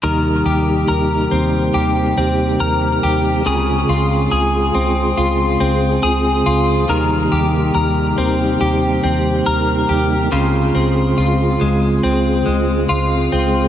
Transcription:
<<
  \new Staff \with { instrumentName = "Clean electric guitar" } { \time 4/4 \key ees \mixolydian \tempo 4 = 70 <ees bes'>8 g'8 bes'8 c'8 g'8 c'8 bes'8 g'8 | <des aes'>8 f'8 aes'8 c'8 f'8 c'8 aes'8 f'8 | <ees bes'>8 g'8 bes'8 c'8 g'8 c'8 bes'8 g'8 | <des f'>8 c'8 f'8 aes8 c'8 aes8 f'8 c'8 | }
  \new Staff \with { instrumentName = "Tonewheel organ" } { \time 4/4 \key ees \mixolydian <c g bes ees' g'>1 | <des aes c' f' aes'>1 | <c g bes ees' g'>1 | <des aes c' f' aes'>1 | }
  \new Staff \with { instrumentName = "Fingered electric bass" } { \clef bass \time 4/4 \key ees \mixolydian ees,8 ees,8 ees,8 ees,8 ees,8 ees,8 ees,8 ees,8 | des,8 des,8 des,8 des,8 des,8 des,8 des,8 des,8 | ees,8 ees,8 ees,8 ees,8 ees,8 ees,8 ees,8 ees,8 | des,8 des,8 des,8 des,8 des,8 des,8 des,8 des,8 | }
>>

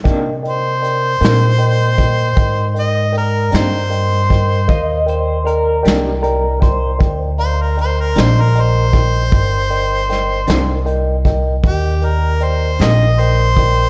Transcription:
<<
  \new Staff \with { instrumentName = "Tine electric piano" } { \time 12/8 \key c \minor \tempo 4. = 52 <bes' d'' ees'' g''>8 <bes' d'' ees'' g''>8 <bes' d'' ees'' g''>8 <bes' d'' ees'' g''>8 <bes' d'' ees'' g''>8 <bes' d'' ees'' g''>8 <bes' d'' ees'' g''>8 <bes' d'' ees'' g''>8 <bes' d'' ees'' g''>8 <bes' d'' ees'' g''>8 <bes' d'' ees'' g''>8 <bes' d'' ees'' g''>8 | <bes' d'' ees'' f''>8 <bes' d'' ees'' g''>8 <bes' d'' ees'' g''>8 <bes' d'' ees'' g''>8 <bes' d'' ees'' g''>8 <bes' d'' ees'' g''>8 <bes' d'' ees'' g''>8 <bes' d'' ees'' f''>8 <bes' d'' ees'' g''>8 <bes' d'' ees'' g''>8 <bes' d'' ees'' g''>8 <bes' d'' ees'' g''>8 | <bes' d'' ees'' g''>8 <bes' d'' ees'' g''>8 <bes' d'' ees'' g''>8 <bes' d'' ees'' g''>8 <bes' d'' ees'' g''>8 <bes' d'' ees'' g''>8 <bes' d'' ees'' g''>8 <bes' d'' ees'' g''>8 <bes' d'' ees'' g''>8 <bes' d'' ees'' g''>8 <bes' d'' ees'' g''>8 <bes' d'' ees'' g''>8 | }
  \new Staff \with { instrumentName = "Harmonica" } { \time 12/8 \key c \minor r8 c''2. ees''8 bes'8 c''4.~ | c''8 r2. c''16 bes'16 c''16 bes'16 c''16 bes'16 c''4~ | c''2 r4 g'8 bes'8 c''8 ees''8 c''4 | }
  \new Staff \with { instrumentName = "Clean electric guitar" } { \time 12/8 \key c \minor r1. | ees''8 c''8 bes'8 g'8 bes'8 c''8. r2 r8. | r1. | }
  \new Staff \with { instrumentName = "Clean electric guitar" } { \clef bass \time 12/8 \key c \minor <c ees bes d'>8 r4 <c ees bes d'>8 r2 r8 <c ees bes d'>8 r4 | r4. <c ees bes d'>8 r2 r8 <c ees bes d'>8 r4 | r4. <c ees bes d'>8 r2 r8 <c ees bes d'>8 r4 | }
  \new Staff \with { instrumentName = "Upright bass" } { \clef bass \time 12/8 \key c \minor c4. bes,4. aes,4. g,4. | ees,4. c,4. d,4. bes,,4. | g,,4. c,4. ees,4. bes,,4. | }
  \new DrumStaff \with { instrumentName = "Drums" } \drummode { \time 12/8 <hh bd>8 hh8 hh8 <hh sn>8 hh8 <hh bd>8 <hh bd>8 hh8 hh8 <hh sn>8 hh8 <hh bd>8 | <hh bd>8 hh8 hh8 <hh sn>8 hh8 <hh bd>8 <hh bd>8 hh8 hh8 <hh sn>8 hh8 <hh bd>8 | <hh bd>8 hh8 <hh sn>8 <hh sn>8 hh8 <hh bd>8 <hh bd>8 hh8 hh8 <hh sn>8 hh8 <hh bd>8 | }
>>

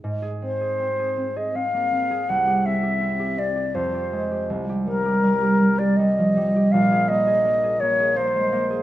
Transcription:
<<
  \new Staff \with { instrumentName = "Flute" } { \time 3/4 \key aes \major \tempo 4 = 82 r8 c''4~ c''16 ees''16 f''4 | ges''8 e''4 d''8 c''4 | r8 bes'4~ bes'16 d''16 ees''4 | f''8 ees''4 des''8 c''4 | }
  \new Staff \with { instrumentName = "Harp" } { \time 3/4 \key aes \major << { <c' ees' aes'>2.~ | <c' ees' aes'>2. | r2. | r2. | } \\ { aes,16 aes'16 c'16 aes'16 c'16 aes'16 c'16 aes'16 c'16 bes16 c'16 aes'16 | c,16 g'16 c'16 g'16 c'16 g'16 c'16 g'16 f,16 g'16 aes16 g'16 | c,16 g'16 g16 g'16 g16 g'16 g16 g'16 g16 f16 g16 g'16 | bes,,16 aes'16 bes16 aes'16 bes16 aes'16 bes16 aes'16 bes16 aes16 bes16 aes'16 | } >> }
>>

